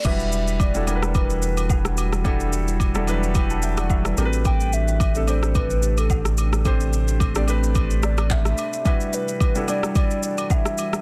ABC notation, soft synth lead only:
X:1
M:4/4
L:1/16
Q:"Swing 16ths" 1/4=109
K:Em
V:1 name="Soft synth lead"
e2 e2 d4 B6 z2 | z16 | g2 e4 c2 B3 A3 z2 | z8 z2 d2 e4 |
e2 B4 d2 d2 d2 e4 |]